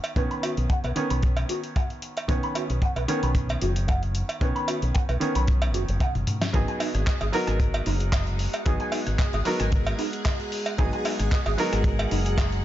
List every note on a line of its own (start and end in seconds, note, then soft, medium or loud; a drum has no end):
0.00 0.13 D#3 medium
0.00 0.14 B3 medium
0.00 0.14 C#4 medium
0.00 cowbell medium
0.04 closed hi-hat soft
0.16 0.26 B1 medium
0.16 0.93 D#3 medium
0.16 0.93 B3 medium
0.16 0.94 C#4 medium
0.16 0.21 B4 medium
0.16 kick loud
0.16 closed hi-hat soft
0.31 0.40 B5 medium
0.31 closed hi-hat soft
0.43 0.50 F#4 medium
0.43 closed hi-hat medium
0.43 cowbell medium
0.57 0.66 B1 medium
0.57 closed hi-hat soft
0.70 0.77 F#5 medium
0.70 kick loud
0.70 closed hi-hat soft
0.84 0.92 B1 medium
0.84 0.88 B4 medium
0.84 closed hi-hat soft
0.84 cowbell medium
0.96 2.26 D#3 medium
0.96 2.26 B3 medium
0.96 2.26 C#4 medium
0.96 1.07 A#4 medium
0.96 muted fingered electric bass stroke soft
0.96 closed hi-hat medium
1.10 1.43 B1 medium
1.10 1.14 B5 medium
1.10 closed hi-hat soft
1.23 kick loud
1.23 closed hi-hat soft
1.37 closed hi-hat soft
1.37 cowbell medium
1.49 1.57 F#4 medium
1.49 closed hi-hat medium
1.64 closed hi-hat soft
1.76 1.87 F#5 medium
1.76 kick loud
1.76 closed hi-hat soft
1.76 cowbell medium
1.90 closed hi-hat soft
2.02 closed hi-hat medium
2.17 closed hi-hat soft
2.17 cowbell medium
2.28 2.39 B1 medium
2.28 3.05 D#3 medium
2.28 3.06 B3 medium
2.28 3.06 C#4 medium
2.28 2.33 B4 medium
2.28 kick loud
2.28 closed hi-hat soft
2.43 2.53 B5 medium
2.43 closed hi-hat soft
2.55 2.63 F#4 medium
2.55 closed hi-hat medium
2.55 cowbell medium
2.70 2.78 B1 medium
2.70 closed hi-hat soft
2.82 2.89 F#5 medium
2.82 kick loud
2.82 closed hi-hat medium
2.96 3.05 B1 medium
2.96 3.00 B4 medium
2.96 closed hi-hat soft
2.96 cowbell medium
3.08 4.38 D#3 medium
3.08 4.38 B3 medium
3.08 4.39 C#4 medium
3.08 3.19 A#4 medium
3.08 closed hi-hat medium
3.23 3.55 B1 medium
3.23 3.27 B5 medium
3.23 closed hi-hat soft
3.35 kick medium
3.35 closed hi-hat soft
3.49 closed hi-hat soft
3.49 cowbell medium
3.61 4.22 F#1 medium
3.61 3.69 F#4 medium
3.61 closed hi-hat medium
3.76 closed hi-hat medium
3.88 3.99 F#5 medium
3.88 kick loud
3.88 closed hi-hat soft
3.88 cowbell medium
4.03 closed hi-hat soft
4.15 closed hi-hat medium
4.29 closed hi-hat soft
4.29 cowbell medium
4.41 4.51 B1 medium
4.41 5.18 D#3 medium
4.41 5.18 B3 medium
4.41 5.19 C#4 medium
4.41 4.46 B4 medium
4.41 kick loud
4.41 closed hi-hat medium
4.56 4.65 B5 medium
4.56 closed hi-hat soft
4.68 4.75 F#4 medium
4.68 closed hi-hat medium
4.68 cowbell medium
4.82 4.91 B1 medium
4.82 closed hi-hat soft
4.94 5.02 F#5 medium
4.94 kick loud
4.94 closed hi-hat medium
5.09 5.17 B1 medium
5.09 5.13 B4 medium
5.09 closed hi-hat soft
5.09 cowbell medium
5.20 6.50 D#3 medium
5.20 6.51 B3 medium
5.20 6.51 C#4 medium
5.20 5.32 A#4 medium
5.20 muted fingered electric bass stroke soft
5.20 closed hi-hat medium
5.35 5.75 B1 medium
5.35 5.39 B5 medium
5.35 closed hi-hat medium
5.47 kick loud
5.47 closed hi-hat medium
5.62 closed hi-hat soft
5.62 cowbell medium
5.74 5.84 F#1 medium
5.74 5.81 F#4 medium
5.74 closed hi-hat medium
5.88 5.97 F#1 medium
5.88 closed hi-hat medium
6.00 6.12 F#5 medium
6.00 kick loud
6.00 closed hi-hat medium
6.00 high tom medium
6.00 cowbell medium
6.15 6.23 F#1 medium
6.15 closed hi-hat soft
6.15 high tom medium
6.27 closed hi-hat medium
6.27 mid tom medium
6.42 snare medium
6.42 closed hi-hat soft
6.42 cowbell medium
6.53 6.64 G#1 medium
6.53 7.30 F#3 medium
6.53 7.31 B3 medium
6.53 7.31 D#4 medium
6.53 12.65 G#4 medium
6.53 6.58 G#4 medium
6.53 7.31 G#4 medium
6.53 12.65 F#5 medium
6.53 kick loud
6.53 closed hi-hat medium
6.68 6.78 G#5 medium
6.68 closed hi-hat soft
6.80 6.88 D#4 medium
6.80 open hi-hat loud
6.80 cowbell medium
6.95 7.03 G#1 medium
6.95 cross-stick medium
6.95 closed hi-hat soft
7.07 7.14 D#5 medium
7.07 kick loud
7.07 clap loud
7.07 closed hi-hat medium
7.21 7.30 G#1 medium
7.21 7.25 G#4 medium
7.21 closed hi-hat soft
7.21 cowbell medium
7.32 8.63 F#3 medium
7.32 8.63 B3 medium
7.32 8.64 D#4 medium
7.32 7.44 F#4 medium
7.32 8.64 A#4 medium
7.32 open hi-hat medium
7.47 7.80 G#1 medium
7.47 7.51 G#5 medium
7.47 cross-stick medium
7.47 closed hi-hat medium
7.60 kick loud
7.60 closed hi-hat medium
7.74 closed hi-hat soft
7.74 cowbell medium
7.86 8.46 F#1 medium
7.86 7.94 D#4 medium
7.86 open hi-hat loud
8.00 closed hi-hat medium
8.12 8.24 D#5 medium
8.12 kick loud
8.12 clap loud
8.12 closed hi-hat medium
8.12 cowbell medium
8.27 closed hi-hat soft
8.39 open hi-hat medium
8.53 closed hi-hat medium
8.53 cowbell medium
8.65 8.76 G#1 medium
8.65 9.43 F#3 medium
8.65 9.43 B3 medium
8.65 9.43 D#4 medium
8.65 8.71 G#4 medium
8.65 9.44 G#4 medium
8.65 kick loud
8.65 closed hi-hat medium
8.80 8.90 G#5 medium
8.80 closed hi-hat soft
8.92 9.00 D#4 medium
8.92 open hi-hat loud
8.92 cowbell medium
9.07 9.15 G#1 medium
9.07 cross-stick medium
9.07 closed hi-hat soft
9.19 9.26 D#5 medium
9.19 kick loud
9.19 clap loud
9.19 closed hi-hat soft
9.33 9.42 G#1 medium
9.33 9.37 G#4 medium
9.33 closed hi-hat soft
9.33 cowbell medium
9.45 10.75 F#3 medium
9.45 10.76 B3 medium
9.45 10.76 D#4 medium
9.45 9.57 F#4 medium
9.45 10.76 A#4 medium
9.45 muted fingered electric bass stroke soft
9.45 open hi-hat medium
9.60 9.93 G#1 medium
9.60 9.64 G#5 medium
9.60 cross-stick medium
9.60 closed hi-hat soft
9.72 kick loud
9.72 closed hi-hat medium
9.87 closed hi-hat soft
9.87 cowbell medium
9.99 10.06 D#4 medium
9.99 open hi-hat loud
10.13 closed hi-hat medium
10.25 10.36 D#5 medium
10.25 kick loud
10.25 clap loud
10.25 closed hi-hat medium
10.25 cowbell medium
10.40 closed hi-hat soft
10.52 open hi-hat medium
10.66 closed hi-hat soft
10.66 cowbell medium
10.78 10.88 G#1 loud
10.78 11.55 F#3 medium
10.78 11.55 B3 medium
10.78 11.56 D#4 medium
10.78 10.83 G#4 medium
10.78 11.56 G#4 medium
10.78 kick loud
10.78 closed hi-hat soft
10.93 11.02 G#5 medium
10.93 closed hi-hat soft
11.05 11.12 D#4 medium
11.05 open hi-hat loud
11.05 cowbell medium
11.20 11.28 G#1 medium
11.20 cross-stick medium
11.20 closed hi-hat soft
11.32 11.39 D#5 medium
11.32 kick loud
11.32 clap loud
11.32 closed hi-hat soft
11.46 11.54 G#1 medium
11.46 11.50 G#4 medium
11.46 closed hi-hat soft
11.46 cowbell medium
11.58 12.65 F#3 medium
11.58 12.65 B3 medium
11.58 12.65 D#4 medium
11.58 11.69 F#4 medium
11.58 12.65 A#4 medium
11.58 open hi-hat medium
11.73 12.05 G#1 medium
11.73 11.77 G#5 medium
11.73 cross-stick medium
11.73 closed hi-hat soft
11.84 kick loud
11.84 closed hi-hat soft
11.99 closed hi-hat soft
11.99 cowbell medium
12.11 12.65 F#1 loud
12.11 12.19 D#4 medium
12.11 open hi-hat loud
12.26 closed hi-hat soft
12.38 12.49 D#5 medium
12.38 kick loud
12.38 clap loud
12.38 closed hi-hat soft
12.38 cowbell medium
12.52 closed hi-hat soft